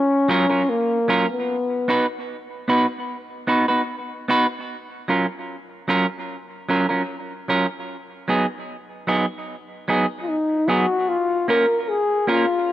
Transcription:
Already playing: C#4
0.28 F#3 C#4 F4 A#4
0.50 F#3 C#4 F4 A#4
0.69 A#3
1.08 F#3 C#4 F4 A#4
1.30 B3
1.88 B3 D#4 F#4 B4
2.68 B3 D#4 F#4 B4
3.47 B3 D#4 F#4 B4
3.68 B3 D#4 F#4 B4
4.28 B3 D#4 F#4 B4
5.08 F#3 C#4 F4 A#4
5.88 F#3 C#4 F4 A#4
6.69 F#3 C#4 F4 A#4
6.89 F#3 C#4 F4 A#4
7.48 F#3 C#4 F4 A#4
8.28 F#3 B3 D#4 G#4
9.07 F#3 B3 D#4 G#4
9.88 F#3 B3 D#4 G#4
10.22 F4
10.29 D#4
10.68 F#3 B3 D#4 F#4 G#4
11.09 F4
11.48 A#3 C#4 F4 A#4
11.83 A#4
11.89 G#4
12.27 A#3 C#4 F4 A#4

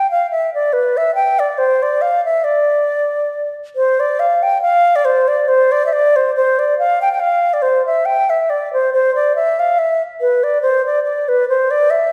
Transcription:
0.11 F5
0.31 E5
0.54 D5
0.73 B4
0.97 E5
1.15 G5
1.39 D5
1.58 C5
1.83 D5
2.02 F5
2.25 E5
2.44 D5
3.76 C5
4.00 D5
4.20 F5
4.43 G5
4.62 F5
4.96 D5
5.05 C5
5.28 D5
5.48 C5
5.72 D5
5.86 E5
5.93 D5
6.16 C5
6.36 C5
6.59 D5
6.79 F5
7.02 G5
7.12 G5
7.20 F5
7.53 D5
7.62 C5
7.86 E5
8.06 G5
8.30 E5
8.50 D5
8.73 C5
8.93 C5
9.15 D5
9.36 E5
9.59 F5
9.79 E5
10.21 B4
10.44 D5
10.62 C5
10.86 D5
11.04 D5
11.28 B4
11.49 C5
11.71 D5
11.90 E5

